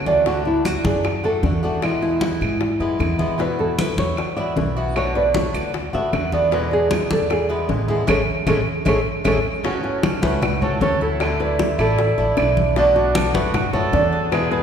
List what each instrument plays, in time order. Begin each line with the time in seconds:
Already playing: upright bass D2
0.06 steel-string acoustic guitar E3 A3 C#4 F#4, cuban tres D4, high conga
0.26 steel-string acoustic guitar D3 A3 D4 F#4, cuban tres D4, nylon-string guitar F#4, high bongo, high conga
0.45 nylon-string guitar E4, high bongo, high conga
0.65 steel-string acoustic guitar D3 A3 D4 F#4, cuban tres F#4, nylon-string guitar F#4, high bongo, high conga, claves
0.84 upright bass F#2, nylon-string guitar G#4, cuban tres D5, high bongo, high conga
1.04 muted steel-string acoustic guitar stroke, high bongo, high conga, claves
1.24 steel-string acoustic guitar A3 D4 F#4, cuban tres A4, nylon-string guitar A4, high bongo, high conga
1.43 upright bass E2, steel-string acoustic guitar D3 A3 D4 F#4, high bongo, low bongo, high conga
1.63 steel-string acoustic guitar A3 D4 F#4, nylon-string guitar F#4, cuban tres G#4
1.82 steel-string acoustic guitar B2 E3 G#3 B3 E4, nylon-string guitar E4, high bongo, high conga, claves
2.02 cuban tres E4, nylon-string guitar E4, high bongo, high conga
2.21 steel-string acoustic guitar E3 G#3 B3 E4, high bongo, high conga
2.41 upright bass G#2, cuban tres G#4, high bongo, high conga, claves
2.60 muted steel-string acoustic guitar stroke, high bongo, high conga
2.80 upright bass F#2, steel-string acoustic guitar E3 G#3 B3 E4, cuban tres B4, high bongo, high conga
2.99 upright bass E2, steel-string acoustic guitar E3 G#3 B3 E4, high bongo, low bongo, high conga, claves
3.18 steel-string acoustic guitar E3 G#3 B3 E4, cuban tres E4, high conga
3.38 steel-string acoustic guitar B2 E3 B3 E4 F#4, cuban tres E4, nylon-string guitar B4, high bongo, high conga
3.59 nylon-string guitar A4, high bongo, high conga
3.78 steel-string acoustic guitar E3 B3 E4 F#4, cuban tres B4, nylon-string guitar B4, high bongo, high conga, claves
3.97 upright bass E2, nylon-string guitar C#5, cuban tres E5, high bongo, high conga
4.17 muted steel-string acoustic guitar stroke, high bongo, high conga, claves
4.36 steel-string acoustic guitar E3 B3 E4 F#4, nylon-string guitar D5, cuban tres E5, high bongo, high conga
4.56 upright bass B1, steel-string acoustic guitar E3 B3 E4 F#4, high bongo, low bongo, high conga
4.77 steel-string acoustic guitar E3 B3 E4 F#4, cuban tres F#4
4.96 steel-string acoustic guitar B2 D3 A3 B3 F#4, nylon-string guitar C#5, high bongo, high conga, claves
5.15 cuban tres D4, nylon-string guitar B4, high bongo, high conga
5.34 steel-string acoustic guitar D3 A3 B3 F#4, nylon-string guitar C#5, high bongo, high conga
5.54 upright bass D2, cuban tres F#4, nylon-string guitar D5, high bongo, high conga, claves
5.74 muted steel-string acoustic guitar stroke, high bongo, high conga
5.93 upright bass D2, steel-string acoustic guitar D3 A3 B3 F#4, cuban tres A4, nylon-string guitar E5, high bongo, high conga
6.12 upright bass E2, steel-string acoustic guitar D3 A3 B3 F#4, high bongo, low bongo, high conga, claves
6.32 steel-string acoustic guitar D3 A3 B3 F#4, cuban tres D4, high conga
6.51 steel-string acoustic guitar B2 D3 G#3 B3 E4, cuban tres D4, nylon-string guitar B4, high bongo, high conga
6.71 nylon-string guitar G#4, high bongo, high conga
6.90 steel-string acoustic guitar D3 G#3 B3 E4, cuban tres G#4, high bongo, high conga, claves
7.10 upright bass E2, nylon-string guitar A4, cuban tres D5, high bongo, high conga
7.30 nylon-string guitar G#4, muted steel-string acoustic guitar stroke, high bongo, high conga, claves
7.49 steel-string acoustic guitar D3 G#3 B3 E4, cuban tres B4, high bongo, high conga
7.68 upright bass A1, steel-string acoustic guitar D3 G#3 B3 E4, high bongo, low bongo, high conga
7.88 steel-string acoustic guitar D3 G#3 B3 E4, cuban tres E4, nylon-string guitar G#4, high conga
8.07 upright bass A1, steel-string acoustic guitar G#3 A3 C#4, cuban tres E4 G#4 A4, nylon-string guitar G#4 A4 C#5, low bongo, high conga, claves
8.47 upright bass A1, steel-string acoustic guitar G#3 A3 C#4, cuban tres E4 G#4 A4, nylon-string guitar G#4 A4 C#5, low bongo, high conga, claves
8.85 upright bass A1, steel-string acoustic guitar G#3 A3 C#4, cuban tres E4 G#4 A4, nylon-string guitar G#4 A4 C#5, low bongo, high conga, claves
9.24 upright bass A1, steel-string acoustic guitar G#3 A3 C#4, cuban tres E4 G#4 A4, nylon-string guitar G#4 A4 C#5, low bongo, high conga, claves
9.63 steel-string acoustic guitar C#3 E3 A3 C#4 F#4, trumpet C#4, cuban tres C#4, nylon-string guitar F#4, high bongo, high conga
9.84 trumpet C#4, nylon-string guitar F#4, high bongo, high conga
10.03 cuban tres F#4, high bongo, high conga, claves
10.22 upright bass C#2, steel-string acoustic guitar E3 A3 C#4 F#4, trumpet F#4, nylon-string guitar B4, high bongo, high conga
10.42 cuban tres E4, muted steel-string acoustic guitar stroke, high bongo, high conga, low conga, claves
10.61 steel-string acoustic guitar E3 A3 C#4 F#4, trumpet A4, nylon-string guitar C#5, high bongo, high conga, low conga
10.81 upright bass D2, steel-string acoustic guitar E3 A3 C#4 F#4, cuban tres C#4, trumpet A4, nylon-string guitar C#5, high bongo, low bongo, high conga
11.00 trumpet E4, cuban tres A4, nylon-string guitar A4
11.20 steel-string acoustic guitar D3 A3 D4 E4, high bongo, high conga, claves
11.39 trumpet E4, nylon-string guitar B4, cuban tres D5, high bongo, high conga
11.59 high bongo, high conga
11.78 upright bass A1, steel-string acoustic guitar A3 D4 E4, trumpet E4, nylon-string guitar A4, cuban tres D5, high bongo, high conga, claves
11.98 muted steel-string acoustic guitar stroke, high bongo, high conga
12.18 upright bass A1, steel-string acoustic guitar A3 D4 E4, cuban tres D5, high bongo, high conga
12.37 upright bass B1, steel-string acoustic guitar D3 A3 D4 E4, cuban tres D5, high bongo, low bongo, high conga, claves
12.57 high conga
12.76 steel-string acoustic guitar B2 D3 A3 B3 F#4, trumpet D4, cuban tres D4, nylon-string guitar F#4, high bongo, high conga
12.95 trumpet D4, nylon-string guitar F#4, high bongo, high conga
13.15 cuban tres A4, high bongo, high conga, claves
13.33 upright bass F#2, steel-string acoustic guitar D3 A3 B3 F#4, trumpet F#4, nylon-string guitar B4, high bongo, high conga
13.54 cuban tres F#4, muted steel-string acoustic guitar stroke, high bongo, high conga, low conga, claves
13.73 steel-string acoustic guitar D3 A3 B3 F#4, trumpet A4, nylon-string guitar C#5, high bongo, high conga, low conga
13.93 upright bass E2, steel-string acoustic guitar D3 A3 B3 F#4, cuban tres D4, high bongo, low bongo, high conga
14.13 cuban tres G#4
14.31 steel-string acoustic guitar B2 D3 G#3 B3 E4, trumpet G#4, nylon-string guitar B4, high bongo, high conga, claves
14.51 trumpet G#4, nylon-string guitar B4, cuban tres B4, high bongo, high conga